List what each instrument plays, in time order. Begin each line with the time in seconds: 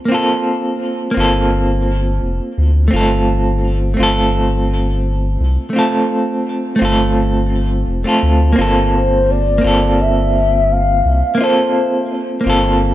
0.05 clean electric guitar A#3 C4
0.12 clean electric guitar F4 A4
1.11 clean electric guitar A#3 C4
1.17 analog synth bass G1, clean electric guitar F4 A4
2.23 analog synth bass F1
2.58 analog synth bass D2
2.88 clean electric guitar A3 C4
2.93 analog synth bass G1, clean electric guitar F4 A4
3.94 clean electric guitar A3 C4
3.99 analog synth bass G1, clean electric guitar F4 A4
5.40 analog synth bass C2
5.70 clean electric guitar A3 C4
5.76 clean electric guitar F4 A4
6.76 clean electric guitar A3 C4
6.81 analog synth bass G1, clean electric guitar F4 A4
7.87 analog synth bass F1
8.04 clean electric guitar A3 C4 F4
8.08 clean electric guitar A4
8.23 analog synth bass D2
8.53 clean electric guitar A#3 C4
8.58 analog synth bass G1, clean electric guitar F4 A4
8.94 soft synth lead C5
9.30 soft synth lead D5
9.58 clean electric guitar A#3 C4
9.64 analog synth bass G1, clean electric guitar F4 A4
10.01 soft synth lead E5
10.71 soft synth lead F5
11.05 analog synth bass C2
11.35 clean electric guitar A#3 C4
11.41 clean electric guitar F4 A4, soft synth lead C5
12.41 clean electric guitar A#3 C4
12.46 analog synth bass G1, clean electric guitar F4 A4